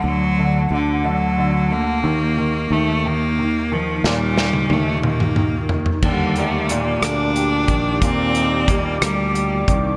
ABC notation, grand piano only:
X:1
M:6/8
L:1/8
Q:3/8=60
K:Eblyd
V:1 name="Grand piano" clef=bass
D, D, D, D, D, D, | E, E, E, E, E, E, | B,, E, E, E, E, E, | D, G, B,,3 E, |
B,, E G,3 E, |]